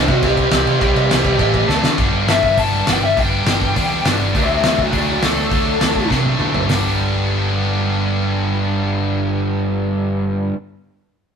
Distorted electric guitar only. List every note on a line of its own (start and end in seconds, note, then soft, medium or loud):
0.00 0.22 C3 medium
0.00 0.23 G3 medium
0.00 0.23 C4 loud
0.00 0.23 E4 loud
0.24 0.52 C3 loud
0.24 0.52 G3 loud
0.24 0.52 C4 loud
0.24 0.51 E4 loud
0.52 0.79 C3 medium
0.52 0.80 G3 medium
0.52 0.80 C4 medium
0.52 0.81 E4 medium
0.80 1.09 C3 loud
0.80 1.09 G3 loud
0.80 1.09 C4 loud
0.80 1.08 E4 loud
1.09 1.39 C3 medium
1.09 1.38 G3 medium
1.09 1.38 C4 medium
1.09 1.38 E4 loud
1.38 1.68 A2 loud
1.38 1.68 E3 loud
1.38 1.66 A3 loud
1.38 1.68 E4 loud
1.67 1.96 D3 loud
1.67 1.97 A3 loud
1.67 1.97 D4 loud
1.67 1.97 A4 loud
1.97 2.27 G2 loud
1.97 2.27 D3 medium
1.97 2.27 G3 medium
1.97 2.26 B3 loud
1.97 2.27 D4 loud
2.28 2.57 G2 medium
2.28 2.58 D3 medium
2.28 2.58 G3 medium
2.28 2.58 B3 medium
2.28 2.59 D4 medium
2.58 2.87 G2 medium
2.58 2.87 D3 medium
2.58 2.87 G3 medium
2.58 2.87 B3 loud
2.58 2.87 D4 loud
2.87 3.16 G2 medium
2.87 3.16 D3 medium
2.87 3.16 G3 medium
2.87 3.17 B3 medium
2.87 3.18 D4 medium
3.17 3.47 G2 medium
3.17 3.46 D3 medium
3.17 3.46 G3 medium
3.17 3.45 B3 loud
3.17 3.46 D4 loud
3.46 3.74 G2 medium
3.46 3.75 D3 medium
3.46 3.75 G3 medium
3.46 3.75 B3 medium
3.46 3.76 D4 medium
3.76 4.05 G2 medium
3.76 4.05 D3 loud
3.76 4.05 G3 medium
3.76 4.04 B3 loud
3.76 4.04 D4 loud
4.05 4.34 G2 medium
4.05 4.33 D3 medium
4.05 4.34 G3 medium
4.05 4.34 B3 medium
4.05 4.35 D4 medium
4.34 4.63 D3 medium
4.34 4.63 F#3 loud
4.34 4.63 A3 loud
4.34 4.63 D4 loud
4.63 4.91 D3 medium
4.63 4.91 F#3 medium
4.63 4.92 A3 medium
4.63 4.93 D4 medium
4.92 5.22 D3 medium
4.92 5.22 F#3 medium
4.92 5.22 A3 loud
4.92 5.21 D4 medium
5.22 5.50 D3 medium
5.22 5.50 F#3 medium
5.22 5.51 A3 medium
5.22 5.51 D4 medium
5.51 5.80 D3 medium
5.51 5.80 F#3 medium
5.51 5.80 A3 loud
5.51 5.80 D4 loud
5.81 6.09 D3 medium
5.81 6.09 F#3 medium
5.81 6.10 A3 medium
5.81 6.10 D4 medium
6.10 6.39 D3 loud
6.10 6.38 F#3 loud
6.10 6.38 A3 medium
6.10 6.38 D4 loud
6.39 6.68 D3 medium
6.39 6.68 F#3 medium
6.39 6.68 A3 medium
6.39 6.68 D4 medium
6.68 10.54 G2 medium
6.68 10.55 D3 medium
6.68 10.55 G3 medium
6.68 10.56 B3 medium
6.72 10.56 D4 medium